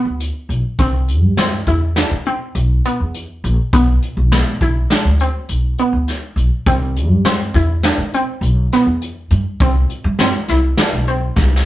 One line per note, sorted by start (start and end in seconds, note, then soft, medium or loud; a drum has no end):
0.00 0.43 B3 medium
0.05 0.28 D2 medium
0.20 closed hi-hat medium
0.49 0.61 B1 medium
0.49 closed hi-hat medium
0.79 1.22 C2 medium
0.79 1.31 C4 medium
0.79 kick medium
0.79 closed hi-hat medium
1.08 closed hi-hat medium
1.22 1.45 G2 medium
1.37 1.64 C4 medium
1.37 snare medium
1.37 closed hi-hat medium
1.67 2.01 E2 medium
1.67 1.93 E4 medium
1.67 kick medium
1.67 closed hi-hat medium
1.96 2.23 D4 medium
1.96 snare medium
1.96 closed hi-hat medium
2.11 2.34 C3 medium
2.26 2.78 C4 medium
2.26 closed hi-hat medium
2.55 2.78 B1 medium
2.55 closed hi-hat medium
2.85 3.37 B3 medium
2.85 closed hi-hat medium
3.00 3.23 E2 medium
3.14 closed hi-hat medium
3.44 3.55 A#1 medium
3.44 closed hi-hat medium
3.73 3.96 B1 medium
3.73 4.25 B3 medium
3.73 kick loud
3.73 closed hi-hat medium
4.02 closed hi-hat medium
4.17 4.40 B1 medium
4.32 4.57 B3 medium
4.32 snare medium
4.32 closed hi-hat medium
4.61 4.84 B1 medium
4.61 4.87 E4 medium
4.61 kick medium
4.61 closed hi-hat medium
4.90 5.17 D4 medium
4.90 snare loud
4.90 closed hi-hat medium
5.05 5.39 D2 medium
5.20 5.72 C4 medium
5.20 closed hi-hat medium
5.49 5.72 B1 medium
5.49 closed hi-hat medium
5.78 6.30 B3 medium
5.78 closed hi-hat medium
5.93 6.16 D2 medium
6.08 snare soft
6.08 closed hi-hat medium
6.36 6.48 B1 medium
6.36 closed hi-hat medium
6.66 7.10 C2 medium
6.66 7.18 C4 medium
6.66 kick loud
6.66 closed hi-hat medium
6.96 closed hi-hat medium
7.10 7.33 G2 loud
7.25 7.51 C4 medium
7.25 snare loud
7.25 closed hi-hat medium
7.54 7.89 E2 medium
7.54 7.81 E4 medium
7.54 kick medium
7.54 closed hi-hat medium
7.83 8.10 D4 medium
7.83 snare loud
7.83 closed hi-hat medium
7.97 8.21 C3 medium
8.13 8.66 C4 medium
8.13 closed hi-hat medium
8.41 8.65 B1 medium
8.41 closed hi-hat medium
8.72 9.24 B3 medium
8.72 snare soft
8.72 closed hi-hat medium
8.86 9.09 E2 medium
9.02 closed hi-hat medium
9.30 9.42 G2 medium
9.30 closed hi-hat medium
9.60 9.83 C2 loud
9.60 10.13 C4 medium
9.60 kick loud
9.60 closed hi-hat medium
9.90 closed hi-hat medium
10.04 10.27 G2 loud
10.19 10.46 C4 medium
10.19 snare loud
10.19 closed hi-hat medium
10.48 10.72 C2 medium
10.48 10.75 E4 medium
10.48 snare soft
10.48 closed hi-hat medium
10.77 11.04 D4 medium
10.77 snare loud
10.77 closed hi-hat medium
10.92 11.27 B1 medium
11.07 11.59 C4 medium
11.07 closed hi-hat medium
11.36 11.60 C2 medium
11.36 kick medium
11.36 snare soft
11.56 snare medium